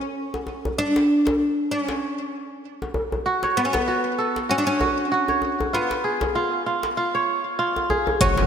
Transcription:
0.00 0.74 C#4 medium
0.34 djembe tone medium
0.47 djembe tone medium
0.65 djembe bass medium
0.78 1.71 D4 medium
0.96 djembe slap medium
1.27 djembe slap medium
1.27 djembe bass medium
1.71 2.91 C#4 medium
1.89 djembe slap medium
2.82 djembe tone medium
2.94 djembe bass medium
3.12 djembe bass medium
3.26 3.87 F#4 medium
3.43 4.58 C#5 medium
3.43 djembe slap medium
3.57 3.65 B3 medium
3.65 3.73 C#4 medium
3.73 4.52 B3 medium
3.73 djembe slap medium
3.73 djembe bass medium
3.88 4.49 F#4 medium
4.18 5.50 A4 medium
4.36 djembe slap medium
4.49 4.58 C#4 loud
4.49 4.80 F#4 medium
4.58 4.66 D4 medium
4.67 5.77 C#4 loud
4.80 5.11 F#4 medium
4.80 djembe bass medium
5.12 5.79 F#4 medium
5.28 6.44 C#5 medium
5.28 djembe tone medium
5.42 djembe tone medium
5.60 djembe bass medium
5.73 7.86 B3 medium
5.73 6.35 F4 medium
5.91 djembe slap medium
5.91 djembe tone soft
6.04 7.41 G#4 medium
6.21 djembe slap medium
6.21 djembe bass medium
6.35 6.66 F4 medium
6.66 6.97 F4 medium
6.83 djembe slap medium
6.97 7.58 F4 medium
7.15 8.29 C#5 medium
7.59 8.27 F4 medium
7.76 djembe tone medium
7.90 8.47 G#4 medium
7.90 djembe bass medium
8.07 djembe bass medium
8.21 8.47 F#1 loud
8.21 8.47 C#4 loud
8.21 8.47 F#4 medium
8.21 kick medium
8.21 closed hi-hat medium
8.21 impact medium
8.21 cabasa soft
8.37 djembe slap medium

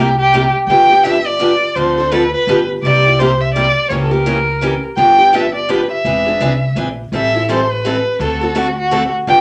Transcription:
0.00 0.46 C2 medium
0.00 0.18 G4 medium
0.18 0.51 G4 loud
0.34 0.44 C3 medium
0.34 0.44 G3 medium
0.34 0.44 A#3 medium
0.34 0.44 E4 medium
0.34 0.44 G4 medium
0.67 1.53 G1 medium
0.67 0.89 D3 medium
0.67 0.89 F3 medium
0.67 0.90 B3 medium
0.67 0.90 D4 medium
0.67 0.88 G4 medium
0.67 1.05 G5 medium
0.90 1.04 B3 soft
0.90 1.04 D4 soft
0.90 1.03 G4 medium
1.04 1.15 D3 medium
1.04 1.15 F3 medium
1.04 1.15 B3 medium
1.04 1.15 D4 medium
1.04 1.16 G4 loud
1.04 1.28 E5 medium
1.26 1.77 D5 medium
1.39 1.50 D3 medium
1.39 1.51 F3 medium
1.39 1.51 B3 medium
1.39 1.51 D4 medium
1.39 1.51 G4 medium
1.75 2.33 D2 medium
1.75 1.96 D3 medium
1.75 1.96 F3 medium
1.75 1.96 C4 medium
1.75 1.97 D4 medium
1.75 1.96 A4 medium
1.75 2.13 C5 medium
1.98 2.11 C4 soft
1.98 2.11 D4 soft
1.98 2.11 A4 soft
2.11 2.22 D3 medium
2.11 2.22 F3 medium
2.11 2.22 C4 medium
2.11 2.22 D4 medium
2.11 2.23 A4 loud
2.11 2.33 B4 medium
2.33 2.66 B4 medium
2.47 2.75 G1 medium
2.47 2.58 D3 medium
2.47 2.59 F3 medium
2.47 2.58 B3 medium
2.47 2.59 D4 medium
2.47 2.59 G4 medium
2.82 3.68 C2 medium
2.82 3.04 C3 medium
2.82 3.04 G3 medium
2.82 3.04 A#3 medium
2.82 3.04 E4 medium
2.82 3.05 G4 medium
2.82 3.21 D5 medium
3.06 3.20 A#3 soft
3.06 3.19 E4 soft
3.06 3.19 G4 soft
3.19 3.30 C3 medium
3.19 3.30 G3 medium
3.19 3.30 A#3 medium
3.19 3.30 E4 medium
3.19 3.31 G4 loud
3.19 3.42 C5 medium
3.41 3.54 E5 medium
3.54 3.66 C3 medium
3.54 3.66 G3 medium
3.54 3.66 A#3 medium
3.54 3.66 E4 medium
3.54 3.66 G4 medium
3.54 3.88 D5 medium
3.89 4.76 C#2 medium
3.89 4.11 C#3 medium
3.89 4.11 E3 medium
3.89 4.11 A#3 medium
3.89 4.11 C#4 medium
3.89 4.10 G4 medium
3.89 3.95 C#5 medium
4.03 4.12 A4 medium
4.10 4.26 A#3 soft
4.10 4.26 C#4 medium
4.10 4.25 G4 medium
4.10 4.83 A#4 medium
4.26 4.37 C#3 medium
4.26 4.37 E3 medium
4.26 4.37 A#3 medium
4.26 4.37 C#4 medium
4.26 4.37 G4 medium
4.61 4.72 C#3 medium
4.61 4.73 E3 medium
4.61 4.73 A#3 medium
4.61 4.73 C#4 medium
4.61 4.73 G4 loud
4.97 5.83 G1 medium
4.97 5.18 D3 medium
4.97 5.18 F3 medium
4.97 5.18 B3 medium
4.97 5.18 D4 medium
4.97 5.17 G4 medium
4.97 5.36 G5 medium
5.18 5.33 B3 soft
5.18 5.33 D4 soft
5.18 5.32 G4 soft
5.33 5.44 D3 medium
5.33 5.44 F3 medium
5.33 5.45 B3 medium
5.33 5.44 D4 medium
5.33 5.45 G4 loud
5.33 5.54 E5 medium
5.55 5.72 D5 medium
5.69 5.80 D3 medium
5.69 5.80 F3 medium
5.69 5.80 B3 medium
5.69 5.80 D4 medium
5.69 5.80 G4 medium
5.69 5.91 B4 medium
5.91 6.73 E5 medium
6.04 6.33 E1 medium
6.04 6.25 E3 medium
6.04 6.26 C4 medium
6.04 6.26 D4 medium
6.04 6.25 G#4 medium
6.26 6.40 C4 soft
6.26 6.40 D4 soft
6.26 6.40 G#4 soft
6.40 6.71 C2 medium
6.40 6.51 E3 medium
6.40 6.52 C4 medium
6.40 6.52 D4 medium
6.40 6.52 G#4 medium
6.76 7.06 A#1 medium
6.76 6.87 E3 medium
6.76 6.88 C4 medium
6.76 6.88 D4 medium
6.76 6.88 G#4 medium
7.12 7.98 A1 medium
7.12 7.33 E3 medium
7.12 7.33 G3 medium
7.12 7.33 C4 medium
7.12 7.34 E4 medium
7.12 7.33 A4 medium
7.16 7.48 E5 medium
7.34 7.48 C4 soft
7.34 7.49 E4 soft
7.34 7.48 A4 medium
7.49 7.59 E3 medium
7.49 7.60 G3 medium
7.49 7.60 C4 medium
7.49 7.60 E4 medium
7.49 7.60 A4 medium
7.49 7.74 C5 medium
7.72 8.21 B4 medium
7.85 7.95 E3 medium
7.85 7.95 G3 medium
7.85 7.96 C4 medium
7.85 7.96 E4 medium
7.85 7.96 A4 medium
8.19 9.06 D2 medium
8.19 8.41 D3 medium
8.19 8.41 A3 medium
8.19 8.41 C4 medium
8.19 8.41 F#4 medium
8.19 8.40 A4 medium
8.19 8.59 A4 medium
8.41 8.54 C4 soft
8.41 8.54 F#4 medium
8.41 8.55 A4 medium
8.55 8.66 D3 medium
8.55 8.66 A3 medium
8.55 8.67 C4 medium
8.55 8.67 F#4 loud
8.55 8.78 F#4 medium
8.55 8.67 A4 medium
8.79 9.11 F#4 medium
8.91 9.02 D3 medium
8.91 9.02 A3 medium
8.91 9.03 C4 medium
8.91 9.03 F#4 medium
8.91 9.03 A4 loud
9.27 9.41 G1 medium
9.27 9.41 D3 medium
9.27 9.41 F3 medium
9.27 9.41 B3 medium
9.27 9.41 D4 medium
9.27 9.41 G4 medium
9.27 9.41 G5 loud

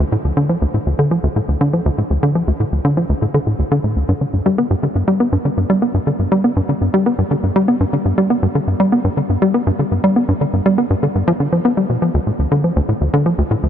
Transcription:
0.12 0.17 A2 medium
0.24 0.32 D2 medium
0.37 0.49 D3 loud
0.49 0.57 F3 medium
0.62 0.66 D2 loud
0.74 0.79 A2 medium
0.86 0.94 D2 medium
0.99 1.10 D3 loud
1.11 1.19 F3 medium
1.23 1.28 D2 loud
1.36 1.41 A2 medium
1.48 1.56 D2 medium
1.61 1.72 D3 loud
1.73 1.81 F3 medium
1.86 1.90 D2 loud
1.98 2.03 A2 medium
2.10 2.18 D2 medium
2.23 2.34 D3 loud
2.35 2.43 F3 medium
2.47 2.52 D2 loud
2.60 2.65 A2 medium
2.72 2.80 D2 medium
2.85 2.96 D3 loud
2.97 3.05 F3 medium
3.09 3.14 D2 loud
3.22 3.27 A2 medium
3.34 3.39 D3 loud
3.47 3.54 A2 medium
3.59 3.64 D2 medium
3.71 3.79 D3 loud
3.84 3.96 A2 medium
3.96 4.04 D2 medium
4.09 4.13 G2 loud
4.21 4.26 D3 medium
4.33 4.41 G2 medium
4.46 4.58 G3 loud
4.58 4.66 B3 medium
4.71 4.75 G2 loud
4.83 4.88 D3 medium
4.95 5.03 G2 medium
5.08 5.19 G3 loud
5.20 5.28 B3 medium
5.32 5.37 G2 loud
5.45 5.50 D3 medium
5.57 5.65 G2 medium
5.70 5.81 G3 loud
5.82 5.90 B3 medium
5.94 5.99 G2 medium
6.07 6.12 D3 medium
6.19 6.27 G2 medium
6.32 6.43 G3 loud
6.44 6.52 B3 medium
6.56 6.61 G2 loud
6.69 6.74 D3 medium
6.81 6.89 G2 medium
6.94 7.06 G3 loud
7.06 7.14 B3 medium
7.18 7.23 G2 loud
7.31 7.36 D3 medium
7.43 7.51 G2 medium
7.56 7.67 G3 loud
7.68 7.76 B3 medium
7.80 7.85 G2 loud
7.93 7.98 D3 medium
8.05 8.13 G2 medium
8.18 8.29 G3 loud
8.30 8.38 B3 medium
8.43 8.47 G2 loud
8.55 8.60 D3 medium
8.67 8.75 G2 medium
8.80 8.92 G3 loud
8.92 9.00 B3 medium
9.04 9.09 G2 loud
9.17 9.22 D3 medium
9.29 9.37 G2 medium
9.42 9.54 G3 loud
9.54 9.62 B3 medium
9.67 9.71 G2 loud
9.79 9.84 D3 medium
9.91 9.99 G2 medium
10.04 10.15 G3 loud
10.16 10.24 B3 medium
10.28 10.33 G2 loud
10.41 10.46 D3 medium
10.53 10.61 G2 medium
10.66 10.77 G3 loud
10.78 10.86 B3 medium
10.90 10.95 G2 loud
11.03 11.08 D3 medium
11.15 11.23 G2 medium
11.28 11.32 F3 loud
11.40 11.48 D3 medium
11.52 11.60 F3 medium
11.65 11.73 B3 medium
11.77 11.85 G3 medium
11.90 11.97 B2 medium
12.02 12.10 F3 medium
12.14 12.19 D2 loud
12.27 12.31 A2 medium
12.39 12.47 D2 medium
12.51 12.63 D3 loud
12.64 12.72 F3 medium
12.76 12.81 D2 loud
12.89 12.93 A2 medium
13.01 13.09 D2 medium
13.13 13.25 D3 loud
13.26 13.34 F3 medium
13.38 13.43 D2 loud
13.51 13.55 A2 medium
13.63 13.69 D2 medium

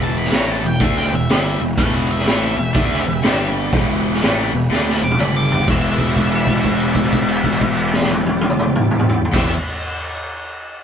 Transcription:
0.00 0.29 E1 medium
0.00 0.32 E2 medium
0.00 0.31 B2 medium
0.00 0.31 E3 medium
0.00 1.73 E4 medium
0.00 1.73 G4 medium
0.00 1.73 B4 medium
0.00 0.17 A5 medium
0.18 0.35 B5 medium
0.24 snare soft
0.31 0.61 A1 medium
0.31 0.61 A2 medium
0.31 0.62 E3 medium
0.31 0.62 A3 medium
0.31 0.51 A#5 loud
0.31 snare loud
0.31 open hi-hat medium
0.51 0.65 A5 medium
0.63 0.79 E1 medium
0.63 0.77 E2 medium
0.63 0.78 B2 medium
0.63 0.81 G5 medium
0.80 1.09 D2 medium
0.80 1.10 D3 medium
0.80 1.11 A3 medium
0.80 1.11 D4 loud
0.80 kick medium
0.80 open hi-hat medium
0.84 0.98 E5 medium
0.98 1.13 G5 loud
0.98 snare soft
1.11 1.28 E1 medium
1.11 1.25 E2 medium
1.11 1.26 B2 medium
1.15 1.30 E5 medium
1.29 1.59 G1 medium
1.29 1.59 G2 medium
1.29 1.60 D3 loud
1.29 1.60 G3 loud
1.29 1.60 E5 loud
1.29 snare loud
1.29 open hi-hat medium
1.60 1.77 E1 medium
1.60 1.75 E2 medium
1.60 1.75 B2 medium
1.76 2.23 E1 medium
1.76 2.27 E2 medium
1.76 2.26 B2 medium
1.76 2.26 E3 loud
1.76 3.22 G4 medium
1.76 3.22 B4 medium
1.76 3.22 E5 medium
1.76 1.94 E5 medium
1.76 1.94 A5 loud
1.76 kick loud
1.76 open hi-hat medium
1.94 2.09 B4 medium
1.94 2.10 G5 medium
2.10 3.53 E5 loud
2.19 snare soft
2.26 2.55 A1 medium
2.26 2.56 A2 medium
2.26 2.57 E3 medium
2.26 2.57 A3 medium
2.26 snare loud
2.26 open hi-hat soft
2.56 2.74 E1 medium
2.56 2.71 E2 medium
2.56 2.71 B2 medium
2.73 3.04 D2 medium
2.73 3.05 D3 medium
2.73 3.04 A3 medium
2.73 3.05 D4 medium
2.73 kick medium
2.73 open hi-hat medium
2.92 snare soft
3.05 3.23 E1 medium
3.05 3.23 E2 medium
3.05 3.23 B2 medium
3.23 3.70 G1 loud
3.23 3.72 G2 medium
3.23 3.72 D3 medium
3.23 3.72 G3 medium
3.23 3.72 D4 medium
3.23 3.72 G4 medium
3.23 3.72 D5 medium
3.23 snare loud
3.23 open hi-hat medium
3.72 4.18 E1 medium
3.72 4.21 E2 medium
3.72 4.21 B2 loud
3.72 4.21 E3 medium
3.72 5.17 E4 medium
3.72 5.16 G4 medium
3.72 5.17 B4 medium
3.72 kick loud
3.72 open hi-hat medium
4.14 snare soft
4.22 4.51 A1 medium
4.22 4.52 A2 medium
4.22 4.52 E3 medium
4.22 4.52 A3 medium
4.22 snare loud
4.22 open hi-hat soft
4.53 4.69 E1 medium
4.53 4.67 E2 medium
4.53 4.67 B2 medium
4.70 4.99 D2 medium
4.70 5.00 D3 medium
4.70 5.01 A3 medium
4.70 5.01 D4 loud
4.70 snare medium
4.89 snare soft
5.01 5.18 E1 medium
5.01 5.15 E2 medium
5.01 5.16 B2 medium
5.01 5.19 D6 loud
5.11 high tom medium
5.18 5.65 G1 medium
5.18 5.65 G2 medium
5.18 5.67 D3 medium
5.18 5.67 G3 loud
5.18 5.67 D4 medium
5.18 5.67 G4 medium
5.18 5.66 D5 medium
5.18 5.36 B5 medium
5.18 mid tom medium
5.36 5.67 D6 medium
5.51 floor tom medium
5.60 floor tom medium
5.65 9.22 E1 medium
5.65 9.25 E2 medium
5.65 9.26 B2 medium
5.65 9.22 E4 medium
5.65 9.23 G4 medium
5.65 9.22 D5 medium
5.65 9.22 E5 loud
5.65 kick loud
5.65 crash medium
5.69 9.27 E3 medium
5.99 kick medium
5.99 crash soft
6.09 crash soft
6.16 kick medium
6.16 crash soft
6.32 crash soft
6.47 kick medium
6.47 crash soft
6.57 crash soft
6.64 kick medium
6.64 crash soft
6.80 crash soft
6.95 kick medium
6.95 crash soft
7.04 crash soft
7.12 kick medium
7.12 crash medium
7.29 crash soft
7.44 kick medium
7.44 crash soft
7.52 crash soft
7.61 kick medium
7.61 crash soft
7.77 crash soft
7.93 snare medium
8.02 snare medium
8.11 high tom medium
8.26 high tom medium
8.41 high tom medium
8.50 mid tom medium
8.59 mid tom medium
8.76 mid tom medium
8.91 mid tom medium
8.99 mid tom medium
9.09 floor tom loud
9.25 floor tom loud
9.32 9.51 E1 medium
9.32 9.51 E2 loud
9.32 9.52 B2 loud
9.32 9.53 E4 medium
9.32 9.52 G4 medium
9.32 9.52 D5 medium
9.32 kick loud
9.32 snare medium
9.32 crash loud
9.36 9.53 E3 medium
9.36 9.53 E5 loud

